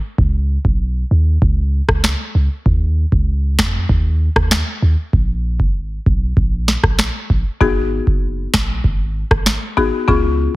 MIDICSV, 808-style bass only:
0, 0, Header, 1, 2, 480
1, 0, Start_track
1, 0, Tempo, 618557
1, 143, Time_signature, 4, 2, 24, 8
1, 8195, End_track
2, 0, Start_track
2, 0, Title_t, "808-style bass"
2, 0, Program_c, 0, 38
2, 143, Note_on_c, 0, 37, 107
2, 447, Note_off_c, 0, 37, 0
2, 503, Note_on_c, 0, 35, 82
2, 807, Note_off_c, 0, 35, 0
2, 863, Note_on_c, 0, 39, 89
2, 1066, Note_off_c, 0, 39, 0
2, 1101, Note_on_c, 0, 37, 109
2, 1406, Note_off_c, 0, 37, 0
2, 1463, Note_on_c, 0, 37, 89
2, 1666, Note_off_c, 0, 37, 0
2, 1823, Note_on_c, 0, 37, 92
2, 1925, Note_off_c, 0, 37, 0
2, 2063, Note_on_c, 0, 39, 105
2, 2367, Note_off_c, 0, 39, 0
2, 2423, Note_on_c, 0, 37, 91
2, 2785, Note_on_c, 0, 41, 92
2, 2796, Note_off_c, 0, 37, 0
2, 2987, Note_off_c, 0, 41, 0
2, 3021, Note_on_c, 0, 39, 115
2, 3326, Note_off_c, 0, 39, 0
2, 3383, Note_on_c, 0, 39, 82
2, 3586, Note_off_c, 0, 39, 0
2, 3744, Note_on_c, 0, 39, 97
2, 3845, Note_off_c, 0, 39, 0
2, 3983, Note_on_c, 0, 34, 105
2, 4343, Note_on_c, 0, 32, 82
2, 4355, Note_off_c, 0, 34, 0
2, 4648, Note_off_c, 0, 32, 0
2, 4706, Note_on_c, 0, 35, 88
2, 4907, Note_off_c, 0, 35, 0
2, 4942, Note_on_c, 0, 34, 108
2, 5247, Note_off_c, 0, 34, 0
2, 5304, Note_on_c, 0, 34, 87
2, 5506, Note_off_c, 0, 34, 0
2, 5665, Note_on_c, 0, 34, 87
2, 5765, Note_off_c, 0, 34, 0
2, 5903, Note_on_c, 0, 32, 105
2, 6208, Note_off_c, 0, 32, 0
2, 6264, Note_on_c, 0, 30, 90
2, 6568, Note_off_c, 0, 30, 0
2, 6626, Note_on_c, 0, 34, 86
2, 6827, Note_off_c, 0, 34, 0
2, 6862, Note_on_c, 0, 32, 104
2, 7167, Note_off_c, 0, 32, 0
2, 7224, Note_on_c, 0, 32, 92
2, 7427, Note_off_c, 0, 32, 0
2, 7584, Note_on_c, 0, 32, 92
2, 7685, Note_off_c, 0, 32, 0
2, 7823, Note_on_c, 0, 37, 107
2, 8128, Note_off_c, 0, 37, 0
2, 8195, End_track
0, 0, End_of_file